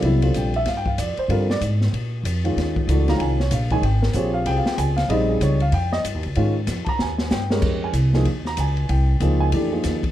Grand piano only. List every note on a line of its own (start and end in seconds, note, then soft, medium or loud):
0.03 0.21 C#3 medium
0.03 0.21 F#3 medium
0.03 0.21 B3 medium
0.03 0.21 E4 medium
0.22 0.50 D3 medium
0.22 0.50 G3 soft
0.22 0.51 C4 medium
0.22 0.51 F4 medium
0.37 0.55 G5 medium
0.56 0.67 E5 medium
0.68 0.78 F5 medium
0.77 0.87 G5 medium
0.87 0.98 F5 medium
0.98 1.17 D5 medium
1.19 1.30 C5 medium
1.29 1.47 D3 medium
1.29 1.47 G3 medium
1.29 1.47 C4 medium
1.29 1.47 F4 medium
1.29 1.50 A#4 medium
1.51 1.58 D5 medium
2.44 2.86 D#3 medium
2.44 2.86 G#3 medium
2.44 2.86 C#4 medium
2.44 2.86 F4 medium
2.89 3.06 E3 medium
2.89 3.06 A3 medium
2.89 3.06 D4 medium
2.89 3.06 F#4 medium
3.08 3.35 D#3 medium
3.08 3.36 G#3 soft
3.08 3.36 C#4 soft
3.08 3.36 F4 medium
3.08 3.20 A#5 medium
3.16 3.19 G5 medium
3.21 3.39 G#5 medium
3.40 3.52 C#5 medium
3.54 3.71 F5 medium
3.71 3.82 D#3 medium
3.71 3.82 G#3 medium
3.71 3.82 C#4 medium
3.71 3.83 D#4 medium
3.71 3.83 G#5 loud
3.84 4.02 G5 medium
4.02 4.14 A#4 medium
4.15 4.46 C4 medium
4.15 4.45 F4 medium
4.15 4.45 G4 medium
4.15 4.46 G#4 medium
4.15 4.34 C#5 medium
4.34 4.46 F5 medium
4.47 4.94 C4 soft
4.47 4.94 F4 soft
4.47 4.94 G4 medium
4.47 4.94 G#4 medium
4.47 4.57 G5 medium
4.58 4.67 F5 medium
4.67 4.77 G5 medium
4.78 4.97 G#5 medium
4.97 5.09 F5 medium
5.10 5.57 C#3 medium
5.10 5.57 G3 medium
5.10 5.57 C4 medium
5.10 5.57 D#4 medium
5.10 5.28 D#5 medium
5.29 5.41 G#4 medium
5.43 5.61 C#5 medium
5.62 5.73 F5 medium
5.74 5.92 G5 medium
5.93 6.00 D#5 medium
6.36 6.54 D#3 medium
6.36 6.54 G#3 medium
6.36 6.54 C#4 medium
6.36 6.54 F4 medium
6.85 6.86 A5 medium
6.89 7.00 A#5 medium
7.02 7.30 G#5 medium
7.32 7.79 G5 medium
7.51 7.92 G#3 medium
7.51 7.92 C#4 medium
7.51 7.92 G4 medium
7.51 7.92 A#4 medium
7.84 7.95 G#5 medium
8.14 8.25 F3 medium
8.14 8.25 A#3 medium
8.14 8.25 D#4 medium
8.14 8.25 G#4 medium
8.47 8.58 A#5 loud
8.60 8.88 G#5 medium
8.89 9.37 G5 medium
9.21 9.52 F3 medium
9.21 9.52 A#3 medium
9.21 9.52 D#4 medium
9.21 9.52 G#4 medium
9.40 9.48 G#5 loud
9.53 9.71 E3 medium
9.53 9.71 A3 medium
9.53 9.71 D4 medium
9.53 9.71 G4 medium
9.72 10.00 F3 medium
9.72 10.00 A#3 soft
9.72 10.00 D#4 medium
9.72 10.00 G#4 medium